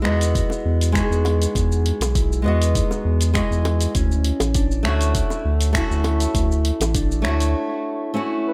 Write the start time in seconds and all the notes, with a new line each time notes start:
Already playing: E4
0.02 G#3 B3 D#5, finger snap
0.06 E2 F#4
0.21 open hi-hat, shaker
0.35 F#4, kick, open hi-hat, shaker
0.50 high bongo, shaker
0.65 E2
0.81 open hi-hat, shaker
0.92 G#3 B3 D#4 G#4, finger snap, kick, open hi-hat
0.96 F#4, shaker
1.10 E2, shaker
1.25 open hi-hat, high bongo
1.42 open hi-hat, shaker
1.55 E2 F#4, kick, open hi-hat, shaker
1.72 shaker
1.86 open hi-hat
2.00 B1, open hi-hat, high bongo, shaker
2.15 E4, kick, open hi-hat, shaker
2.33 shaker
2.42 E2 G#3 B3 D#5
2.48 F#4
2.62 open hi-hat, shaker
2.75 D#4, kick, open hi-hat, shaker
2.91 high bongo, shaker
3.05 E2
3.21 open hi-hat, shaker
3.34 G#3 B3 E4 F#4 D#5, finger snap, kick, open hi-hat, shaker
3.51 E2, shaker
3.65 open hi-hat, high bongo
3.81 open hi-hat, shaker
3.95 D2 C#4, kick, open hi-hat, shaker
4.12 shaker
4.25 open hi-hat
4.40 A1, open hi-hat, high bongo, shaker
4.54 D4, kick, open hi-hat, shaker
4.72 shaker
4.83 D2 A3 E4 C#5, finger snap
4.88 F#4
5.01 open hi-hat, shaker
5.15 E4, kick, open hi-hat, shaker
5.30 high bongo, shaker
5.45 D2
5.61 open hi-hat, shaker
5.73 A3 C#4 E4 F#4, finger snap, kick, open hi-hat, shaker
5.78 F#4
5.91 D2, shaker
6.04 open hi-hat, high bongo
6.20 open hi-hat, shaker
6.34 D2 E4, kick, open hi-hat, shaker
6.52 shaker
6.65 open hi-hat
6.80 A1, open hi-hat, high bongo, shaker
6.95 D4, kick, open hi-hat, shaker
7.12 shaker
7.22 D2 A3 C#5, finger snap, open hi-hat
7.26 E4 F#4
7.40 open hi-hat, shaker
8.14 A3 C#4 E4 F#4
8.48 B4